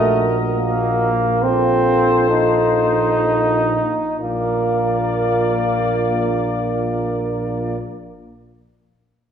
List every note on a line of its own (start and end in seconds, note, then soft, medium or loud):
0.00 3.79 A#1 soft
0.00 0.29 A3 medium
0.00 1.10 F#4 soft
0.00 1.15 A#4 medium
0.00 1.11 D#5 medium
0.56 1.44 A#3 medium
1.43 2.30 C4 medium
1.43 3.79 F4 soft
1.43 3.79 A4 soft
1.43 3.79 C5 medium
2.30 4.16 D#4 medium
4.19 7.77 A#1 soft
4.19 7.77 A#3 medium
4.19 7.77 F4 soft
4.19 7.77 A#4 soft
4.19 7.78 D5 soft